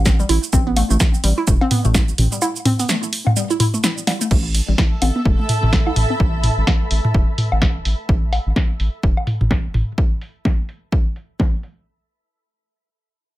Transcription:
Already playing: analog synth bass A1
0.06 kick, snare, cabasa
0.20 synth arpeggio sound G3, cabasa
0.29 analog synth bass A1, synth arpeggio sound E4, open hi-hat
0.43 cabasa
0.53 analog synth bass A1, synth arpeggio sound C4, kick, cabasa
0.67 synth arpeggio sound B3
0.76 synth arpeggio sound A3, open hi-hat, low woodblock
0.90 analog synth bass A1, synth arpeggio sound A3, cabasa
1.00 kick, snare, cabasa
1.14 cabasa
1.24 analog synth bass A1, synth arpeggio sound G3, open hi-hat
1.38 synth arpeggio sound E4
1.47 analog synth bass E1, kick, cabasa
1.61 synth arpeggio sound C4, low woodblock
1.71 synth arpeggio sound B3, open hi-hat, mid tom
1.85 analog synth bass A1, synth arpeggio sound A3, mid tom, cabasa
1.95 synth arpeggio sound A3, kick, snare, cabasa
2.08 cabasa
2.18 analog synth bass A1, open hi-hat, mid tom
2.32 synth arpeggio sound G3, cabasa
2.42 synth arpeggio sound E4, cabasa, low woodblock
2.56 cabasa
2.65 synth arpeggio sound C4, open hi-hat, mid tom
2.79 synth arpeggio sound B3, open hi-hat, cabasa
2.89 synth arpeggio sound A3, snare, cabasa
3.03 synth arpeggio sound A3, cabasa
3.13 open hi-hat
3.27 mid tom, low woodblock
3.36 synth arpeggio sound G3, cabasa
3.50 synth arpeggio sound E4, cabasa
3.60 synth arpeggio sound E4, open hi-hat, mid tom
3.74 synth arpeggio sound A3, cabasa
3.84 synth arpeggio sound E4, snare, cabasa
3.98 cabasa
4.07 synth arpeggio sound G3, snare, open hi-hat, low woodblock
4.21 synth arpeggio sound A3, cabasa
4.31 analog synth bass A1, synth arpeggio sound A3, ambient pad A4, kick, crash
4.51 ambient pad E5, open hi-hat
4.68 analog synth bass A1, synth arpeggio sound G3
4.78 synth arpeggio sound E4, kick, snare
5.02 analog synth bass A1, synth arpeggio sound C4, open hi-hat, low woodblock
5.16 synth arpeggio sound B3
5.25 analog synth bass E1, synth arpeggio sound A3, kick
5.39 synth arpeggio sound A3
5.49 open hi-hat, mid tom
5.63 analog synth bass A1, mid tom
5.73 synth arpeggio sound G3, kick, snare
5.87 synth arpeggio sound E4, low woodblock
5.96 analog synth bass A1, open hi-hat, mid tom
6.10 synth arpeggio sound C4
6.20 analog synth bass A1, kick
6.43 open hi-hat, mid tom
6.58 analog synth bass A1
6.67 kick, snare, low woodblock
6.91 analog synth bass A1, open hi-hat
7.05 mid tom
7.14 analog synth bass E1, kick
7.38 open hi-hat, mid tom
7.52 analog synth bass A1, low woodblock
7.62 kick, snare
7.85 analog synth bass A1, open hi-hat
8.09 analog synth bass A1, kick
8.33 open hi-hat, low woodblock
8.46 analog synth bass A1
8.56 kick, snare
8.80 analog synth bass A1, open hi-hat
9.03 analog synth bass E1, kick
9.17 low woodblock
9.27 open hi-hat, mid tom
9.41 analog synth bass A1, mid tom
9.51 kick, snare
9.74 analog synth bass A1, open hi-hat, mid tom
9.98 kick
10.21 open hi-hat
10.45 kick, snare
10.69 open hi-hat
10.92 kick
11.16 open hi-hat
11.40 kick, snare
11.54 open hi-hat
11.63 open hi-hat

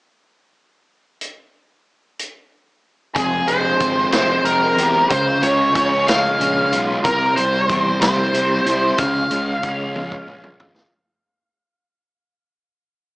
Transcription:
1.21 closed hi-hat
2.19 closed hi-hat
3.15 fingered electric bass F1, overdriven electric guitar F2, tonewheel organ G#3 C4 F4 C5 G5, lead electric guitar G#4, kick, closed hi-hat
3.47 fingered electric bass F1, overdriven electric guitar G#3, lead electric guitar C5, closed hi-hat
3.80 fingered electric bass G#1, overdriven electric guitar C4, kick, closed hi-hat
4.12 fingered electric bass F1, overdriven electric guitar G#3, lead electric guitar C5, snare, closed hi-hat
4.45 fingered electric bass F1, overdriven electric guitar C4, lead electric guitar A#4, closed hi-hat
4.77 fingered electric bass E2, overdriven electric guitar G4, closed hi-hat
5.10 fingered electric bass C#2, overdriven electric guitar C#3, tonewheel organ G#3 C#4 G#4 F5, lead electric guitar C5, kick, closed hi-hat
5.42 fingered electric bass C#2, overdriven electric guitar G#3, lead electric guitar C#5, closed hi-hat
5.74 fingered electric bass C#2, overdriven electric guitar C#4, lead electric guitar C#5, kick, closed hi-hat
6.07 overdriven electric guitar G#3, lead electric guitar F5, snare, closed hi-hat
6.39 fingered electric bass A#1, overdriven electric guitar C#4, closed hi-hat
6.71 fingered electric bass B1, overdriven electric guitar F4, closed hi-hat
7.04 fingered electric bass C2, overdriven electric guitar C3, tonewheel organ G3 C4 E4 G4 C5, lead electric guitar A#4, kick, closed hi-hat
7.36 fingered electric bass C2, overdriven electric guitar G3, lead electric guitar C5, closed hi-hat
7.68 fingered electric bass E2, overdriven electric guitar C4, kick, closed hi-hat
8.01 fingered electric bass C2, overdriven electric guitar G3, lead electric guitar C5, snare, closed hi-hat
8.33 fingered electric bass C2, overdriven electric guitar C4, closed hi-hat
8.65 fingered electric bass C2, overdriven electric guitar E4, closed hi-hat
8.98 fingered electric bass C#2, overdriven electric guitar C#3, tonewheel organ G#3 C#4 F4 G#4, lead electric guitar F5, kick, closed hi-hat
9.30 fingered electric bass C#2, overdriven electric guitar G#3, closed hi-hat
9.62 fingered electric bass C#2, overdriven electric guitar C#4, kick, closed hi-hat
9.95 overdriven electric guitar G#3, high tom
10.12 kick
10.27 fingered electric bass A#1, overdriven electric guitar C#4
10.44 mid tom
10.60 fingered electric bass G#1, overdriven electric guitar F4, floor tom
10.77 snare

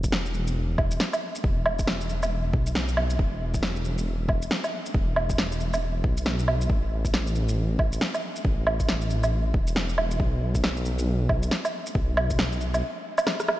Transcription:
Already playing: detuned saw bass E1
0.04 kick, shaker
0.12 snare
0.26 shaker
0.34 shaker
0.47 shaker
0.78 detuned saw bass E1, kick, low woodblock
0.91 shaker
1.00 snare
1.13 low woodblock, shaker
1.35 shaker
1.44 detuned saw bass E1, kick
1.66 low woodblock
1.79 kick, shaker
1.87 snare
2.01 shaker
2.09 shaker
2.23 low woodblock, shaker
2.53 detuned saw bass B1, kick
2.67 shaker
2.75 snare
2.88 shaker
2.97 low woodblock
3.10 shaker
3.19 detuned saw bass E1, kick
3.54 kick, shaker
3.63 snare
3.76 shaker
3.85 shaker
3.98 shaker
4.29 detuned saw bass E1, kick, low woodblock
4.42 shaker
4.51 snare
4.64 low woodblock, shaker
4.86 shaker
4.94 detuned saw bass E1, kick
5.16 low woodblock
5.30 kick, shaker
5.38 snare
5.52 shaker
5.60 shaker
5.74 low woodblock, shaker
6.04 detuned saw bass B1, kick
6.17 shaker
6.26 snare
6.39 shaker
6.48 low woodblock
6.62 shaker
6.70 detuned saw bass A1, kick
7.05 kick, shaker
7.14 snare
7.27 shaker
7.36 shaker
7.49 shaker
7.79 detuned saw bass A1, kick, low woodblock
7.93 shaker
8.01 snare
8.14 low woodblock, shaker
8.36 shaker
8.45 detuned saw bass A1, kick
8.67 low woodblock
8.80 kick, shaker
8.89 snare
9.01 shaker
9.10 shaker
9.24 low woodblock, shaker
9.54 detuned saw bass E1, kick
9.67 shaker
9.76 snare
9.89 shaker
9.98 low woodblock
10.11 shaker
10.20 detuned saw bass B1, kick
10.55 kick, shaker
10.64 snare
10.77 shaker
10.85 shaker
10.99 shaker
11.29 detuned saw bass B1, kick, low woodblock
11.43 shaker
11.51 snare
11.65 low woodblock, shaker
11.87 shaker
11.95 detuned saw bass B1, kick
12.17 low woodblock
12.30 kick, shaker
12.39 snare
12.52 shaker
12.61 shaker
12.74 low woodblock, shaker
13.18 low woodblock, shaker
13.27 cross-stick, snare
13.40 cross-stick, shaker
13.48 cross-stick, low woodblock

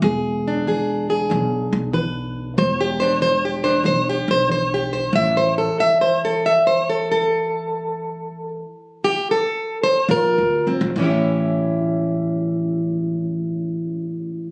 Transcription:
Already playing: steel-string acoustic guitar E4
0.02 upright bass E1, steel-string acoustic guitar E3 G#4
0.48 steel-string acoustic guitar D4
0.67 steel-string acoustic guitar E3 G#4
1.10 steel-string acoustic guitar G#4
1.30 upright bass B1, steel-string acoustic guitar E3
1.73 upright bass B1
1.93 steel-string acoustic guitar E3 B4
2.58 upright bass E1, steel-string acoustic guitar E3 C5
2.81 steel-string acoustic guitar G4
3.00 steel-string acoustic guitar D4 C5
3.21 steel-string acoustic guitar E3 C5
3.45 steel-string acoustic guitar G4
3.64 steel-string acoustic guitar D4 C5
3.84 upright bass B1, steel-string acoustic guitar E3 C5
4.09 steel-string acoustic guitar G4
4.28 upright bass B1, steel-string acoustic guitar C5
4.49 steel-string acoustic guitar E3 C5
4.74 steel-string acoustic guitar G4
4.93 steel-string acoustic guitar C5
5.13 upright bass A1, steel-string acoustic guitar A2 E3 E5
5.37 steel-string acoustic guitar C5
5.58 steel-string acoustic guitar A4
5.80 steel-string acoustic guitar E5
6.01 steel-string acoustic guitar C5
6.25 steel-string acoustic guitar A4
6.46 steel-string acoustic guitar E5
6.67 steel-string acoustic guitar C5
6.89 steel-string acoustic guitar A4
7.12 steel-string acoustic guitar A4
9.04 steel-string acoustic guitar G4
9.31 steel-string acoustic guitar A4
9.84 steel-string acoustic guitar C5
10.08 upright bass A#1, steel-string acoustic guitar A#2 F4 A#4
10.38 upright bass D2
10.67 upright bass C2, steel-string acoustic guitar C4
10.81 upright bass A#1
10.96 upright bass A1, steel-string acoustic guitar A2 E3 C#4
11.02 steel-string acoustic guitar E4 G4

